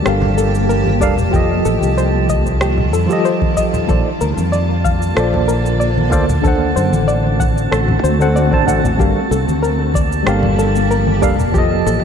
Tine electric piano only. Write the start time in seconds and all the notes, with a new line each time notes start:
0.02 G3 D4 A4
0.07 A#4 F5
1.00 G3 D4 A4 A#4 F5
1.30 F3 F4 G4
1.34 A4 D#5
3.06 F3 F4 G4
3.11 A4 D#5
3.87 A#3 F4 A4 C5 D5
5.14 A#3 F4 A4
5.18 C5 D5
6.10 A#3 F4 A4 C5 D5
6.42 D3 D4 A4 C5
6.48 F#5
8.19 D3 D4 A4 C5 F#5
8.51 D3 D4 A4 C5 A5
8.66 D3 D4 A4 C5 F#5
8.97 G3 D4 A4 A#4 F5
10.23 G3 D4 A4
10.27 A#4 F5
11.21 G3 D4 A4 A#4 F5
11.52 F3 F4 G4
11.57 A4 D#5